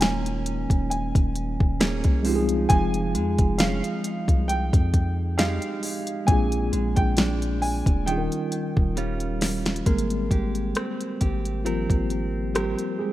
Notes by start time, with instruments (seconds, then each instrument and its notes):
Already playing: 808-style bass D#1, clean electric guitar D#3 A#3 A#4, tine electric piano G#3 C#4 D#4 F4 A#4
0.01 clean electric guitar C#4, grand piano G#5, snare, closed hi-hat
0.26 closed hi-hat
0.46 closed hi-hat
0.70 808-style bass D#1, kick, closed hi-hat
0.90 grand piano G#5, closed hi-hat
1.15 808-style bass D#1, kick, closed hi-hat
1.36 closed hi-hat
1.60 808-style bass D#1, kick
1.81 clean electric guitar A#3 C#4 G#4, snare, closed hi-hat
2.04 808-style bass C2, kick, closed hi-hat
2.23 clean electric guitar F3, tine electric piano G#3 C4 D#4, open hi-hat
2.28 tine electric piano F4 G4
2.36 tine electric piano G#4
2.49 closed hi-hat
2.69 808-style bass F1, clean electric guitar F3, grand piano G#5, kick, closed hi-hat
2.94 closed hi-hat
3.15 808-style bass F2, clean electric guitar G#3, closed hi-hat
3.38 808-style bass F1, kick, closed hi-hat
3.58 clean electric guitar C#4, grand piano F5, snare, closed hi-hat
3.84 clean electric guitar D#4, closed hi-hat
4.04 closed hi-hat
4.28 808-style bass C2, kick, closed hi-hat
4.48 grand piano G5, closed hi-hat
4.73 808-style bass F2, kick, closed hi-hat
4.94 kick, closed hi-hat
5.38 clean electric guitar G#3 D#4 G4, grand piano F5, snare, closed hi-hat
5.62 closed hi-hat
5.83 open hi-hat
6.07 closed hi-hat
6.25 808-style bass A#1, clean electric guitar A#2, tine electric piano G#3 C4 D4, grand piano G#5, kick, closed hi-hat
6.30 tine electric piano F4 G#4
6.52 closed hi-hat
6.73 808-style bass A#1, clean electric guitar G#3, closed hi-hat
6.96 808-style bass A#1, grand piano G5, kick, closed hi-hat
7.17 clean electric guitar D4, snare, closed hi-hat
7.42 closed hi-hat
7.62 grand piano G#5, open hi-hat
7.86 808-style bass D#1, kick, closed hi-hat
8.05 clean electric guitar D#3, tine electric piano G3 C#4 D#4, grand piano G5, closed hi-hat
8.10 tine electric piano F4 G#4
8.18 tine electric piano A#4
8.32 closed hi-hat
8.52 closed hi-hat
8.77 808-style bass D#1, kick
8.97 clean electric guitar G3 C#4 F4, closed hi-hat
9.20 closed hi-hat
9.41 snare, open hi-hat
9.66 snare, closed hi-hat
9.76 closed hi-hat
9.86 808-style bass G#1, tine electric piano G3 A#3 C4 A#4, clean electric guitar G#3, kick, closed hi-hat
9.98 closed hi-hat
10.10 closed hi-hat
10.31 808-style bass G#1, clean electric guitar G4, kick, closed hi-hat
10.55 closed hi-hat
10.75 clean electric guitar C4, cross-stick, closed hi-hat
11.01 closed hi-hat
11.21 808-style bass G#1, clean electric guitar G4, kick, closed hi-hat
11.45 closed hi-hat
11.65 tine electric piano F3 G3 A#3 C4 F4, clean electric guitar C4 G4 A#4, closed hi-hat
11.90 808-style bass G#1, kick, closed hi-hat
12.10 closed hi-hat
12.54 tine electric piano G3 G4, clean electric guitar C4 G4 A#4, cross-stick, closed hi-hat
12.79 closed hi-hat
12.99 tine electric piano G#3 G#4